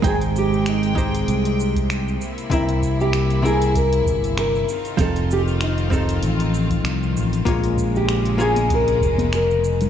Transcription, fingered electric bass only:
X:1
M:4/4
L:1/8
Q:"Swing 16ths" 1/4=97
K:Bbdor
V:1 name="Fingered electric bass" clef=bass
A,,,4 C,,3 z | C,,4- C,, G,,,2 z | F,,,4 =A,,,2 C,, A,,, | B,,,4- B,,, F,,,3 |]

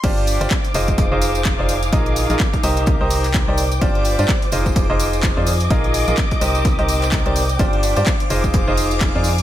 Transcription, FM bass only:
X:1
M:4/4
L:1/16
Q:"Swing 16ths" 1/4=127
K:Cm
V:1 name="FM bass" clef=bass
G,,,3 G,,, z2 F,,,3 F,,,4 F,,,3 | B,,,3 B,,, z2 C,,3 C,,4 C,,3 | G,,,3 G,, z2 F,,,3 F,,,4 F,,3 | B,,,3 B,,, z2 C,,3 C,,4 C,,3 |
G,,,3 G,, z2 F,,,3 F,,,4 F,,3 |]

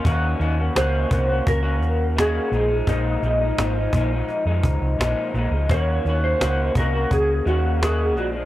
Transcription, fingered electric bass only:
X:1
M:4/4
L:1/16
Q:1/4=85
K:Ebdor
V:1 name="Fingered electric bass" clef=bass
E,,2 E,,2 D,,2 C,,2 D,,2 E,,4 B,,,2 | B,,,2 B,,,2 A,,,2 B,,,2 z F,, D,, C,, B,,, z B,,, D,, | E,,2 E,,2 D,,2 C,,2 D,,2 E,,4 B,,,2 |]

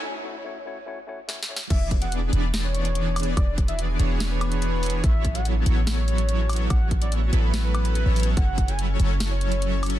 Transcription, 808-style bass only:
X:1
M:4/4
L:1/16
Q:1/4=144
K:Emix
V:1 name="808-style bass" clef=bass
z16 | E,,,6 E,,,8- E,,,2 | E,,,6 E,,,8- E,,,2 | A,,,6 A,,,8- A,,,2 |
A,,,6 A,,,6- A,,, A,,,3 | F,,,6 F,,,8- F,,,2 |]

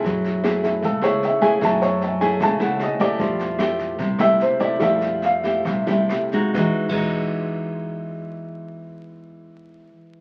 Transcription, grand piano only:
X:1
M:4/4
L:1/8
Q:1/4=145
K:E
V:1 name="Grand piano"
z4 A c e g | a c e g a f d =d- | =d z4 e =c d | e2 =f z4 z |
z8 | z8 |]
V:2 name="Grand piano"
z3 [A,E]3 z2 | [A,E] z3 [G,A,E] z3 | [=G,A,E]8 | [=G,A,E]4- [G,A,E] [G,A,E] z2 |
z8 | z8 |]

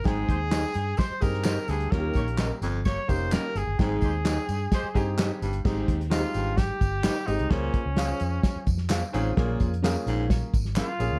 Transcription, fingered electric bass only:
X:1
M:4/4
L:1/16
Q:1/4=129
K:Ab
V:1 name="Fingered electric bass" clef=bass
A,,,2 E,,4 G,,2 z2 G,,4 =D,,2 | E,,2 B,,,4 G,,,4 F,,,3 z G,,, G,,, | A,,,2 E,,4 G,,2 z2 G,,4 G,,,2 | A,,,2 E,,4 A,,,4 G,,,3 z A,,, C,, |
D,,2 z D,,3 F,,2 z2 F,,4 =A,,,2 | B,,,2 F,,4 B,,,4 A,,,3 z B,,, =D,, |]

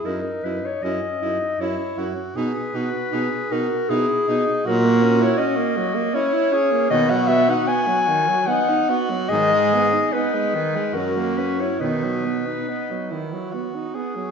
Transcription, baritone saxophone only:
X:1
M:3/4
L:1/8
Q:1/4=77
K:B
V:1 name="Baritone saxophone" clef=bass
F,, F,, F,, F,, F,, F,, | B,, B,, B,, B,, B,, B,, | A,,2 z4 | B,,2 z4 |
G,,2 z2 F,,2 | B,,2 z4 |]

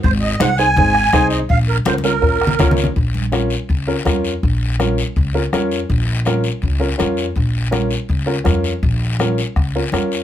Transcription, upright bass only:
X:1
M:4/4
L:1/8
Q:1/4=164
K:Bbm
V:1 name="Upright bass" clef=bass
A,,,2 C,,2 A,,,2 C,,2 | B,,,2 D,,2 B,,,2 D,,2 | B,,,4 D,,2 F,,2 | B,,,4 D,,2 F,,2 |
B,,,4 D,,2 F,,2 | B,,,4 D,,2 F,,2 | B,,,4 D,,2 F,,2 |]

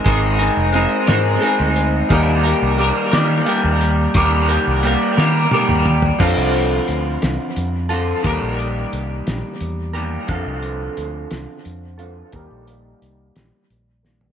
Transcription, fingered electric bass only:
X:1
M:6/8
L:1/16
Q:3/8=59
K:Eblyd
V:1 name="Fingered electric bass" clef=bass
_A,,,3 F,,,2 z _A,,2 z D,,3 | E,,3 C,,2 z E,2 z E,,3 | E,,3 C,,2 z E,2 z E,,3 | F,, C,,3 D,,2 C,, z F,,4 |
E,, B,,,3 C,,2 B,,, z =E,,4 | F,, C,,3 D,,2 C,, z F,,4 | E,, B,,,3 C,,2 B,,, z B,,,4 |]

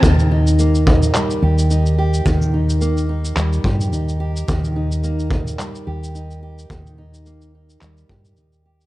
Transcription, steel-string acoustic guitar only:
X:1
M:4/4
L:1/8
Q:"Swing 16ths" 1/4=108
K:Ebmix
V:1 name="Steel-string acoustic guitar"
E, E B, E G, G E G | E, E B, E G, G E G | E, E B, E G, G E G | E, E B, E G, G E G |]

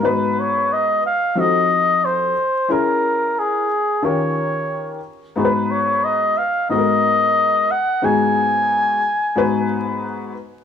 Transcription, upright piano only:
X:1
M:4/4
L:1/8
Q:"Swing 16ths" 1/4=90
K:G#dor
V:1 name="Upright piano"
[G,,B,DFB]3 z [=F,=C_E_G=A]3 z | [C=EGA]3 z [D,C^E=GA]3 z | [G,,B,DFGB]3 z [G,,B,DF=A^A]3 z | [G,,B,DFG]3 z [G,,B,DFB]3 z |]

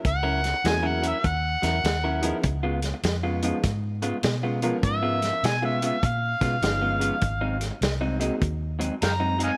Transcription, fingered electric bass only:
X:1
M:4/4
L:1/8
Q:"Swing" 1/4=100
K:Dbmix
V:1 name="Fingered electric bass" clef=bass
D,,2 _F,,2 E,, F,, E,,2 | D,,2 F,,2 A,,2 C,2 | A,,2 C,2 B,, C, =G,,,2 | A,,,2 =C,,2 E,,2 G,,2 |]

